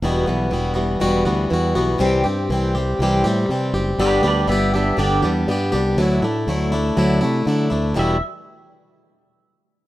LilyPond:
<<
  \new Staff \with { instrumentName = "Pedal steel guitar" } { \time 4/4 \key e \minor \tempo 4 = 121 r1 | r1 | <b' d''>8 <b' d''>8 <g' e''>8 <g' e''>8 d''8 r4. | r1 |
e''8 r2. r8 | }
  \new Staff \with { instrumentName = "Steel-string acoustic guitar" } { \time 4/4 \key e \minor <e, b, e g b fis'>8 <e g b fis'>8 <e g b fis'>8 <e g b fis'>8 <e, b, e g b fis'>8 <e g b fis'>8 <e g b fis'>8 <e g b fis'>8 | <c e g c' g'>8 <g c' g'>8 <e g c' g'>8 <g c' g'>8 <c e g c' g'>8 <g c' g'>8 <e g c' g'>8 <g c' g'>8 | <g, d g b d' g'>8 <g b d' g'>8 <g b d' g'>8 <g b d' g'>8 <g, d g b d' g'>8 <g b d' g'>8 <g b d' g'>8 <g b d' g'>8 | <d fis a d' e'>8 <a d' e'>8 <fis a d' e'>8 <a d' e'>8 <d fis a d' e'>8 <a d' e'>8 <fis a d' e'>8 <a d' e'>8 |
<e, b, e g b fis'>8 r2. r8 | }
  \new Staff \with { instrumentName = "Fingered electric bass" } { \clef bass \time 4/4 \key e \minor e,,8 b,,8 e,,4 e,,8 d,8 e,8 b,,8 | c,8 g,8 c,4 c,8 a,8 c8 fis,,8 | g,,8 d,8 g,,4 g,,8 e,8 g,8 c,8 | d,8 a,8 d,4 d,8 c8 d8 d,8 |
e,,8 r2. r8 | }
>>